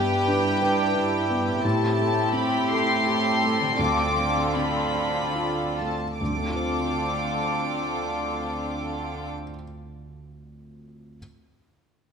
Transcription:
Already playing: harp G2 D4 E4 G4 B4 D5, cello section G2, felt piano G2 B3, viola section D4 E4, violin section G4 B4 G5
0.28 felt piano D4
0.62 felt piano B4
0.95 felt piano E4
1.30 felt piano B3
1.46 harp A2 C4
1.56 harp G4
1.60 cello section A2, violin section G4 A4, harp A4
1.65 felt piano A2, viola section C4, violin section A5
1.99 felt piano A3
2.33 felt piano C4, violin section B5
2.70 felt piano A4, violin section C6
3.06 felt piano G4
3.44 felt piano A3
3.61 harp D3
3.65 harp C4
3.70 harp F4
3.74 harp A4, violin section D6
3.79 felt piano D2, cello section D3, viola section D4, violin section F4
4.17 felt piano A3
4.56 felt piano C4, violin section B5
4.95 felt piano A4
5.35 felt piano F4
5.78 felt piano A3, violin section A5
6.19 felt piano D2, cello section D3, harp D3, viola section C4 D4, violin section F4 A4 D6
6.26 felt piano D3, harp C4
6.33 felt piano A3, harp D4
6.40 felt piano C4, harp F4
6.47 felt piano F4, harp A4
6.54 felt piano C5, harp F5

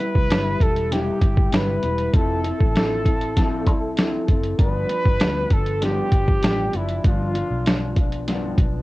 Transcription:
Already playing: trumpet B4
0.00 clean electric guitar G3 B3 E4
0.15 fingered electric bass C2, kick
0.29 fingered electric bass G1, clean electric guitar C3 G3 B3 E4, snare, closed hi-hat
0.60 fingered electric bass E1, clean electric guitar G3 B3 E4, trumpet A4, kick, closed hi-hat
0.76 closed hi-hat
0.91 clean electric guitar C3 G3 B3 E4, trumpet G4, snare, closed hi-hat
1.21 fingered electric bass G1, clean electric guitar G3 B3 E4, kick, closed hi-hat
1.37 kick
1.51 fingered electric bass G1, clean electric guitar C3 G3 B3 E4, trumpet B4, snare, closed hi-hat
1.82 fingered electric bass E1, clean electric guitar G3 B3 E4, closed hi-hat
1.98 closed hi-hat
2.13 fingered electric bass F1, clean electric guitar F3 C4 E4 A4, trumpet A4, kick, closed hi-hat
2.44 clean electric guitar C4 E4 A4, closed hi-hat
2.60 fingered electric bass A1, kick
2.74 clean electric guitar F3 C4 E4 A4, snare, closed hi-hat
3.04 clean electric guitar C4 E4 A4, kick, closed hi-hat
3.21 closed hi-hat
3.36 clean electric guitar F3 C4 E4 A4, kick, snare, closed hi-hat
3.66 fingered electric bass C2, clean electric guitar C4 E4 A4, kick, closed hi-hat
3.97 clean electric guitar F3 C4 E4 A4, snare, closed hi-hat
4.27 fingered electric bass F#1, clean electric guitar C4 E4 A4, kick, closed hi-hat
4.43 closed hi-hat
4.58 fingered electric bass G1, clean electric guitar G2 F3 B3 D4, trumpet B4, kick, closed hi-hat
4.88 clean electric guitar F3 B3 D4, closed hi-hat
5.05 fingered electric bass G1, kick
5.19 fingered electric bass D2, clean electric guitar G2 F3 B3 D4, snare, closed hi-hat
5.50 fingered electric bass G1, clean electric guitar F3 B3 D4, trumpet A4, kick, closed hi-hat
5.66 closed hi-hat
5.81 clean electric guitar G2 F3 B3 D4, trumpet G4, snare, closed hi-hat
6.12 fingered electric bass G1, clean electric guitar F3 B3 D4, kick, closed hi-hat
6.28 kick
6.42 fingered electric bass A1, clean electric guitar G2 F3 B3 D4, snare, closed hi-hat
6.72 fingered electric bass F#1, clean electric guitar F3 B3 D4, trumpet E4, closed hi-hat
6.89 closed hi-hat
7.03 fingered electric bass G1, clean electric guitar G2 F3 B3 D4, trumpet F4, kick, closed hi-hat
7.35 clean electric guitar F3 B3 D4, closed hi-hat
7.50 fingered electric bass B1
7.66 clean electric guitar G2 F3 B3 D4, snare, closed hi-hat
7.96 clean electric guitar F3 B3 D4, kick, closed hi-hat
8.12 closed hi-hat
8.27 clean electric guitar G2 F3 B3 D4, snare, closed hi-hat
8.57 fingered electric bass B1, clean electric guitar F3 B3 D4, kick, closed hi-hat

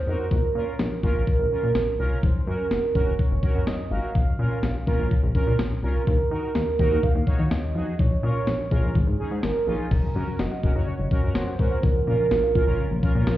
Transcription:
Already playing: soft synth lead C5
0.07 analog synth bass F2, analog polysynth D#4 F#4 A#4
0.31 analog synth bass A#1, soft synth lead A#4, kick
0.55 analog synth bass A#2, analog polysynth C#4 F4 A#4
0.79 analog synth bass A#1, snare
1.03 analog synth bass A#1, analog polysynth C#4 F4 A#4, kick
1.15 analog synth bass A#1
1.27 soft synth lead A#4, kick
1.39 analog synth bass A#1
1.51 analog polysynth C#4 F4 A#4
1.63 analog synth bass A#2
1.75 analog synth bass A#1, snare
1.99 analog synth bass C2, analog polysynth C#4 F4 A#4
2.23 analog synth bass F#1, soft synth lead C5, kick
2.40 soft synth lead C5
2.47 analog synth bass F#2, analog polysynth C#4 F#4 A#4, soft synth lead A#4
2.71 analog synth bass F#1, snare
2.95 analog synth bass F#1, analog polysynth C#4 F#4 A#4, soft synth lead C#5, kick
3.07 analog synth bass F#1
3.19 soft synth lead C#5, kick
3.31 analog synth bass F#1
3.43 analog polysynth C#4 F#4 A#4, kick
3.55 analog synth bass F#2
3.67 analog synth bass F#1, soft synth lead D#5, snare
3.91 analog synth bass G#1, analog polysynth C#4 F#4 A#4, soft synth lead F5
4.15 analog synth bass A#1, kick
4.39 analog synth bass A#2, analog polysynth C#4 F4 A#4
4.63 analog synth bass A#1, snare
4.87 analog synth bass A#1, analog polysynth C#4 F4 A#4, kick
4.99 analog synth bass A#1
5.11 kick
5.23 analog synth bass A#1
5.35 analog polysynth C#4 F4 A#4, kick
5.47 analog synth bass A#2
5.59 analog synth bass A#1, snare
5.83 analog synth bass C2, analog polysynth C#4 F4 A#4
6.07 analog synth bass D#2, soft synth lead A#4, kick
6.31 analog synth bass D#3, analog polysynth D#4 F#4 A#4
6.55 analog synth bass D#2, snare
6.79 analog synth bass D#2, analog polysynth D#4 F#4 A#4, kick
6.91 analog synth bass D#2
7.03 soft synth lead F5, kick
7.15 analog synth bass D#2
7.27 analog polysynth D#4 F#4 C#5, kick
7.39 analog synth bass D#3
7.51 analog synth bass D#2, soft synth lead D#5, snare
7.75 analog synth bass F2, analog polysynth D#4 F#4 G#4
7.99 analog synth bass A#1, soft synth lead C#5, kick
8.23 analog synth bass A#2, analog polysynth C#4 F4 A#4, soft synth lead C#5
8.47 analog synth bass A#1, snare
8.71 analog synth bass A#1, analog polysynth C#4 F4 A#4, soft synth lead G#4, kick
8.83 analog synth bass A#1
8.95 analog synth bass G#1, kick
9.07 analog synth bass G#1
9.19 analog polysynth C#4 D#4 G#4
9.31 analog synth bass G#2
9.43 analog synth bass G#1, soft synth lead A#4, snare
9.67 analog synth bass A#1, analog polysynth C#4 D#4 F4, soft synth lead G#4
9.91 analog synth bass F#1, synth pluck C#3, soft synth lead A#4, kick, crash
10.03 synth pluck F#3
10.15 analog synth bass F#2, synth pluck C#3, analog polysynth C#4 F#4 A#4
10.27 synth pluck F#3
10.39 analog synth bass F#1, synth pluck F#4, soft synth lead D#5, snare
10.51 synth pluck F#5
10.63 analog synth bass F#1, analog polysynth C#4 F#4 A#4, synth pluck F#4, kick
10.75 analog synth bass F#1, analog polysynth C#4 F#4 C#5, synth pluck A#5
10.87 synth pluck C#3, soft synth lead C#5
10.99 analog synth bass F#1, synth pluck F#3
11.11 analog polysynth C#4 F#4 A#4, kick
11.23 analog synth bass F#2, synth pluck F#3, analog polysynth C#4 F#4 A#4
11.35 analog synth bass F#1, synth pluck F#4, soft synth lead C5, snare
11.47 synth pluck F#5
11.59 analog synth bass G#1, analog polysynth C#4 F#4 A#4, synth pluck C#5, kick
11.71 synth pluck F#5
11.83 analog synth bass A#1, synth pluck C#3, soft synth lead A#4, kick
11.95 synth pluck F3
12.07 analog synth bass A#2, synth pluck C#3, analog polysynth C#4 F4 A#4, soft synth lead A#4
12.19 synth pluck F3
12.31 analog synth bass A#1, synth pluck F4, snare
12.43 synth pluck F5
12.55 analog synth bass A#1, analog polysynth C#4 F4 A#4, synth pluck F4, kick
12.67 analog synth bass A#1, analog polysynth C#4 F4 A#4, synth pluck A#5
12.79 synth pluck C#3
12.91 analog synth bass A#1, synth pluck F3
13.03 analog polysynth C#4 F4 A#4, kick
13.15 analog synth bass A#2, synth pluck F3, analog polysynth C#4 F4 A#4
13.27 analog synth bass A#1, synth pluck F4, soft synth lead A#4, snare

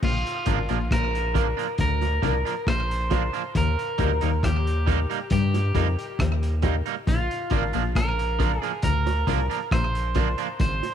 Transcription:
0.02 analog synth bass A#1, clean electric guitar A#2 F4, kick, crash
0.26 closed hi-hat
0.46 analog synth bass G#1, clean electric guitar G#2 F3 A#3 D4, upright piano D4 F4 A#4, kick, closed hi-hat
0.69 analog synth bass A#1, clean electric guitar A#2 F3 A#3 D4, closed hi-hat
0.91 analog synth bass A#1, clean electric guitar A#2 A#4, kick, cross-stick, closed hi-hat
1.15 closed hi-hat
1.34 clean electric guitar F3 A#3 D4, upright piano D4 F4 A#4, kick, closed hi-hat, low bongo
1.57 clean electric guitar F3 A#3 D4, upright piano F4 A#4, closed hi-hat
1.78 analog synth bass D2, clean electric guitar D3 A#4, kick, closed hi-hat
2.02 closed hi-hat, high bongo
2.22 analog synth bass C2, clean electric guitar C3 F3 A#3 D4, upright piano D4 F4 A#4, kick, closed hi-hat
2.45 clean electric guitar F3 A#3 D4, upright piano F4 A#4, closed hi-hat
2.67 analog synth bass A#1, clean electric guitar A#2 C5, kick, cross-stick, closed hi-hat
2.91 closed hi-hat
3.10 clean electric guitar F3 A#3 D4, upright piano D4 F4 A#4, kick, closed hi-hat, high bongo, low bongo
3.33 clean electric guitar F3 A#3 D4, closed hi-hat
3.55 analog synth bass D#2, clean electric guitar D#3 A#4, kick, closed hi-hat
3.79 closed hi-hat
3.98 analog synth bass D2, clean electric guitar D3 G3 A#3 D#4, upright piano D#4 G4 A#4, kick, closed hi-hat
4.21 analog synth bass D#2, clean electric guitar D#3 G3 A#3 D#4, closed hi-hat
4.43 analog synth bass D#2, clean electric guitar D#3 G4, kick, cross-stick, closed hi-hat
4.67 closed hi-hat
4.86 clean electric guitar G3 A#3 D#4, upright piano D#4 G4 A#4, kick, closed hi-hat, low bongo
5.10 clean electric guitar G3 A#3 D#4, closed hi-hat
5.30 analog synth bass G2, clean electric guitar G3 G4, kick, closed hi-hat
5.54 closed hi-hat, high bongo
5.74 analog synth bass F2, clean electric guitar F3 G3 A#3 D#4, upright piano D#4 G4 A#4, kick, closed hi-hat
5.98 upright piano G4 A#4, closed hi-hat
6.19 analog synth bass D#2, clean electric guitar D#3, kick, cross-stick, closed hi-hat
6.43 closed hi-hat
6.62 clean electric guitar G3 A#3 D#4, upright piano D#4 G4 A#4, kick, closed hi-hat, high bongo, low bongo
6.86 clean electric guitar G3 A#3 D#4, closed hi-hat
7.07 analog synth bass A#1, clean electric guitar A#2 F4, kick, closed hi-hat
7.31 closed hi-hat
7.50 analog synth bass G#1, clean electric guitar G#2 F3 A#3 D4, upright piano D4 F4 A#4, kick, closed hi-hat
7.73 analog synth bass A#1, clean electric guitar A#2 F3 A#3 D4, closed hi-hat
7.95 analog synth bass A#1, clean electric guitar A#2 A#4, kick, cross-stick, closed hi-hat
8.19 closed hi-hat
8.39 clean electric guitar F3 A#3 D4, upright piano D4 F4 A#4, kick, closed hi-hat, low bongo
8.61 clean electric guitar F3 A#3 D4 G#4, upright piano F4 A#4, closed hi-hat
8.82 analog synth bass D2, clean electric guitar D3 A#4, kick, closed hi-hat
9.07 closed hi-hat, high bongo
9.27 analog synth bass C2, clean electric guitar C3 F3 A#3 D4, upright piano D4 F4 A#4, kick, closed hi-hat
9.50 clean electric guitar F3 A#3 D4, upright piano F4 A#4, closed hi-hat
9.71 analog synth bass A#1, clean electric guitar A#2 C5, kick, cross-stick, closed hi-hat
9.95 closed hi-hat
10.15 clean electric guitar F3 A#3 D4, upright piano D4 F4 A#4, kick, closed hi-hat, high bongo, low bongo
10.38 clean electric guitar F3 A#3 D4, closed hi-hat
10.60 analog synth bass G#1, clean electric guitar G#2 C5, kick, closed hi-hat
10.83 closed hi-hat, high bongo

